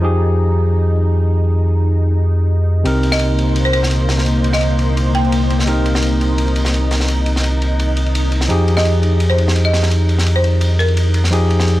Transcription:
0.00 2.84 F2 medium
0.00 2.83 F3 medium
0.00 2.81 D#4 medium
0.00 2.83 D#4 medium
0.00 2.84 G4 medium
0.05 2.84 G#4 medium
2.84 8.48 C2 medium
2.84 5.65 C3 medium
2.84 8.46 A#3 medium
2.84 5.65 C4 medium
2.84 11.28 D#4 medium
2.84 5.66 D#4 medium
2.84 5.66 A#4 medium
2.84 8.46 C5 medium
2.84 ride medium
3.03 ride medium
3.12 3.33 D#5 medium
3.12 snare medium
3.19 ride medium
3.39 ride medium
3.56 ride medium
3.65 3.72 C5 medium
3.65 ride soft
3.73 3.95 C5 medium
3.73 ride medium
3.83 snare medium
3.91 ride medium
4.09 snare medium
4.09 ride medium
4.18 snare soft
4.26 ride medium
4.44 ride medium
4.53 4.74 D#5 medium
4.53 snare soft
4.61 ride medium
4.79 ride medium
4.97 ride medium
5.15 5.42 G5 medium
5.15 ride medium
5.24 ride soft
5.32 ride medium
5.50 ride medium
5.59 snare soft
5.66 8.47 C3 medium
5.66 8.48 C4 medium
5.66 8.48 D#4 medium
5.66 8.49 A#4 medium
5.66 ride medium
5.86 ride medium
5.95 snare medium
6.02 ride medium
6.21 ride medium
6.38 ride medium
6.48 ride soft
6.56 ride medium
6.65 snare medium
6.74 ride medium
6.91 snare soft
6.91 ride medium
7.00 snare soft
7.08 ride medium
7.26 ride medium
7.36 snare soft
7.44 ride medium
7.62 ride medium
7.80 ride medium
7.97 ride medium
8.06 ride soft
8.15 ride medium
8.32 ride medium
8.41 snare soft
8.48 11.80 F2 medium
8.48 11.29 F3 medium
8.48 11.30 D#4 medium
8.48 11.31 G4 medium
8.48 11.31 G#4 medium
8.48 ride medium
8.68 ride medium
8.77 8.98 D#5 medium
8.77 snare medium
8.85 ride medium
9.03 ride medium
9.20 ride medium
9.30 9.36 C5 medium
9.30 ride soft
9.38 ride medium
9.48 snare medium
9.56 ride medium
9.65 9.86 D#5 medium
9.74 snare soft
9.74 ride medium
9.83 snare soft
9.91 ride medium
10.09 ride medium
10.18 snare soft
10.26 ride medium
10.36 10.57 C5 medium
10.44 ride medium
10.61 ride medium
10.79 11.06 A#4 medium
10.79 ride medium
10.88 ride soft
10.97 ride medium
11.14 ride medium
11.24 snare soft
11.31 11.80 F3 medium
11.31 11.80 D#4 medium
11.31 11.80 G4 medium
11.31 11.80 G#4 medium
11.31 11.80 D5 medium
11.31 ride medium
11.50 ride medium
11.60 snare medium
11.68 ride medium

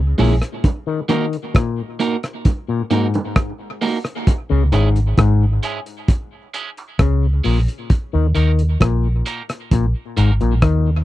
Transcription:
0.00 0.13 C#2 loud
0.18 0.39 A#1 medium
0.18 0.32 A#2 medium
0.18 0.34 G#3 medium
0.18 0.34 C#4 medium
0.18 0.34 E4 loud
0.18 0.34 G#4 loud
0.18 open hi-hat medium
0.18 low bongo medium
0.42 cross-stick medium
0.42 closed hi-hat medium
0.64 kick loud
0.64 closed hi-hat medium
0.64 high bongo medium
0.87 1.00 D#3 medium
1.09 1.36 D#3 medium
1.09 1.24 A#3 medium
1.09 1.25 D#4 loud
1.09 1.25 F#4 loud
1.09 1.25 A#4 loud
1.09 closed hi-hat medium
1.09 high bongo medium
1.33 closed hi-hat medium
1.54 1.82 A#2 medium
1.54 kick loud
1.54 cross-stick loud
1.54 closed hi-hat medium
2.00 2.15 A#3 medium
2.00 2.15 D#4 medium
2.00 2.16 F#4 medium
2.00 2.16 A#4 loud
2.00 closed hi-hat medium
2.23 cross-stick medium
2.23 closed hi-hat medium
2.45 kick loud
2.45 closed hi-hat medium
2.45 high bongo medium
2.68 2.82 A#2 medium
2.91 3.18 G#2 medium
2.91 3.06 A#3 medium
2.91 3.06 D#4 medium
2.91 3.07 F#4 medium
2.91 3.07 A#4 medium
2.91 closed hi-hat medium
2.91 high bongo medium
3.14 closed hi-hat soft
3.14 high bongo medium
3.36 kick loud
3.36 cross-stick loud
3.36 closed hi-hat medium
3.81 3.97 A#3 medium
3.81 3.97 D#4 medium
3.81 3.97 F#4 medium
3.81 3.98 A#4 medium
3.81 open hi-hat medium
3.81 low bongo medium
4.05 cross-stick medium
4.05 closed hi-hat medium
4.27 kick loud
4.27 closed hi-hat medium
4.27 high bongo medium
4.50 4.70 C#2 loud
4.50 4.63 C#3 medium
4.72 5.12 G#1 medium
4.72 4.99 G#2 medium
4.72 4.88 G#3 medium
4.72 4.88 C#4 medium
4.72 4.88 E4 medium
4.72 4.88 G#4 medium
4.72 closed hi-hat medium
4.72 high bongo medium
4.96 closed hi-hat medium
5.18 5.58 G#1 loud
5.18 5.45 G#2 medium
5.18 kick loud
5.18 cross-stick loud
5.18 closed hi-hat medium
5.63 5.78 G#3 medium
5.63 5.79 C#4 medium
5.63 5.79 E4 loud
5.63 5.79 G#4 medium
5.63 closed hi-hat medium
5.86 closed hi-hat medium
6.08 kick loud
6.08 closed hi-hat loud
6.08 high bongo medium
6.54 6.69 G#3 medium
6.54 6.69 C#4 medium
6.54 6.70 E4 medium
6.54 6.70 G#4 medium
6.54 closed hi-hat medium
6.54 high bongo medium
6.77 closed hi-hat soft
6.77 high bongo medium
6.99 7.39 C#2 medium
6.99 7.26 C#3 medium
6.99 kick loud
6.99 cross-stick loud
6.99 closed hi-hat medium
7.44 7.66 A#1 medium
7.44 7.58 A#2 medium
7.44 7.60 G#3 medium
7.44 7.60 C#4 medium
7.44 7.60 E4 medium
7.44 7.60 G#4 medium
7.44 open hi-hat medium
7.44 low bongo medium
7.68 closed hi-hat medium
7.90 kick loud
7.90 closed hi-hat medium
7.90 high bongo medium
8.13 8.33 D#2 loud
8.13 8.27 D#3 medium
8.35 8.75 D#2 medium
8.35 8.62 D#3 medium
8.35 8.50 A#3 medium
8.35 8.51 D#4 medium
8.35 8.51 F#4 loud
8.35 8.51 A#4 loud
8.35 closed hi-hat medium
8.35 high bongo medium
8.59 closed hi-hat medium
8.80 9.21 A#1 medium
8.80 9.08 A#2 medium
8.80 kick loud
8.80 cross-stick loud
8.80 closed hi-hat medium
9.26 9.41 A#3 medium
9.26 9.41 D#4 medium
9.26 9.42 F#4 medium
9.26 9.42 A#4 medium
9.26 closed hi-hat medium
9.49 cross-stick medium
9.49 closed hi-hat medium
9.71 9.92 A#1 medium
9.71 9.86 A#2 medium
9.71 kick loud
9.71 closed hi-hat medium
9.71 high bongo medium
10.17 10.38 G#1 medium
10.17 10.31 G#2 medium
10.17 10.32 A#3 medium
10.17 10.32 D#4 medium
10.17 10.33 F#4 loud
10.17 10.33 A#4 medium
10.17 closed hi-hat medium
10.17 high bongo medium
10.41 10.60 A#1 medium
10.41 10.54 A#2 medium
10.41 closed hi-hat soft
10.41 high bongo medium
10.62 11.02 D#2 medium
10.62 10.90 D#3 medium
10.62 kick loud
10.62 cross-stick loud
10.62 closed hi-hat medium

